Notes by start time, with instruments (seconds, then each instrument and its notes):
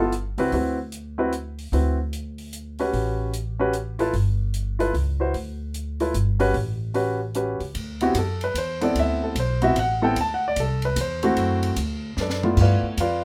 Already playing: upright bass G1
0.00 grand piano B3 E4 F4 A4
0.12 closed hi-hat
0.38 upright bass C#2, grand piano C4 E4 F#4 B4, open hi-hat
0.52 upright bass D2, grand piano C4 E4 F#4 B4, open hi-hat
0.92 closed hi-hat
1.18 grand piano C4 E4 F#4 B4
1.33 closed hi-hat
1.59 open hi-hat
1.72 upright bass D2, grand piano C4 E4 F#4 B4, open hi-hat
2.13 closed hi-hat
2.38 open hi-hat
2.53 closed hi-hat
2.79 grand piano C#4 F#4 G4 B4, open hi-hat
2.93 upright bass A1, open hi-hat
3.34 closed hi-hat
3.59 grand piano C#4 F#4 G4 B4
3.73 closed hi-hat
3.99 grand piano E4 F4 A4 B4, open hi-hat
4.13 upright bass G1, open hi-hat
4.54 closed hi-hat
4.79 grand piano E4 F4 A4 B4, open hi-hat
4.94 upright bass C#2, open hi-hat
5.20 grand piano E4 F#4 B4 C5
5.34 upright bass D2, open hi-hat
5.74 closed hi-hat
6.00 grand piano E4 F4 A4 B4, open hi-hat
6.14 upright bass G1, closed hi-hat
6.40 grand piano C#4 F#4 G4 B4, open hi-hat
6.54 upright bass A1, open hi-hat
6.94 grand piano C#4 F#4 G4 B4, open hi-hat
7.35 grand piano C#4 F#4 G4 B4, closed hi-hat
7.60 upright bass C#2, open hi-hat
7.75 upright bass D2, ride
8.01 grand piano B3 C4 E4 F#4 G4, ride
8.14 upright bass F#2, hi-hat pedal, ride
8.19 grand piano A4
8.41 grand piano B4, ride
8.54 upright bass E2, grand piano C5, hi-hat pedal, ride
8.81 grand piano B3 C4 E4 A4 D5, ride
8.95 upright bass D2, ride
8.99 grand piano E5
9.24 grand piano A4
9.35 upright bass B1, hi-hat pedal, ride
9.40 grand piano C5
9.62 grand piano B3 C4 E4 F#4 E5, ride
9.75 upright bass A1, grand piano F#5, ride
10.02 grand piano B3 C4 E4 A4 G5
10.16 upright bass D2, ride
10.21 grand piano A5
10.34 grand piano F#5
10.48 grand piano D5
10.56 upright bass C2, grand piano A4, hi-hat pedal, ride
10.82 grand piano B4, ride
10.96 upright bass E2, hi-hat pedal, ride
11.01 grand piano C5
11.23 grand piano A3 C4 E4 F#4, ride
11.37 upright bass F#2, ride
11.63 ride
11.76 upright bass D2, hi-hat pedal, ride
12.17 upright bass F#2, grand piano B4 D5, snare
12.21 grand piano D4 A4
12.30 snare
12.43 grand piano A3 B3 E4 F4, mid tom
12.57 upright bass G2, kick, crash
12.61 grand piano F4 B4 D5 F5
12.83 muted upright bass stroke
12.97 upright bass F2, grand piano F4 B4 D5 F5, hi-hat pedal, ride